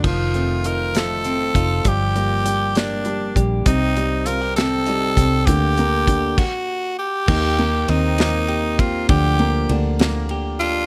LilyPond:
<<
  \new Staff \with { instrumentName = "Tenor saxophone" } { \time 6/8 \key g \minor \tempo 4. = 66 f'4 bes'8 a'4. | g'4. d'4 r8 | ees'4 bes'8 a'4. | g'4. fis'4 g'8~ |
g'4 ees'4. f'8 | g'4 r4. f'8 | }
  \new Staff \with { instrumentName = "Clean electric guitar" } { \time 6/8 \key g \minor ees8 a8 f'8 a8 c'8 f'8 | f8 bes8 g'8 bes8 d'8 g'8 | c'8 c'8 f'16 g'16 c'8 ees'8 g'8 | bes8 bes8 g'8 r4. |
<bes g'>8 bes8 c'8 bes8 g'8 c'8 | <f g'>8 bes8 d'8 bes8 g'8 d'8 | }
  \new Staff \with { instrumentName = "Felt piano" } { \clef bass \time 6/8 \key g \minor f8 c'8 ees'8 f8 c'8 ees'8 | g8 g8 g8 g8 g8 g8 | c8 g8 c'8 c8 g8 c'8 | d8 bes8 d8 r4. |
ees8 bes8 c'8 bes4. | d8 bes8 d8 bes4. | }
  \new Staff \with { instrumentName = "Fingered electric bass" } { \clef bass \time 6/8 \key g \minor f,,2~ f,,8 f,,8 | g,,2~ g,,8 bes,,8 | c,2~ c,8 c,8 | d,4. r4. |
ees,4 ees,2 | d,4 d,2 | }
  \new DrumStaff \with { instrumentName = "Drums" } \drummode { \time 6/8 <cymc bd>8 hh8 hh8 <hh sn>8 hh8 <hh bd>8 | <hh bd>8 hh8 hh8 <hh sn>8 hh8 <hh bd>8 | <hh bd>8 hh8 hh8 <hh sn>8 hh8 <hh bd>8 | <hh bd>8 hh8 <hh bd>8 <cymc bd>4. |
<cymc bd>8 cymr8 cymr8 <cymr sn>8 cymr8 <bd cymr>8 | <bd cymr>8 cymr8 cymr8 <cymr sn>8 cymr8 cymr8 | }
>>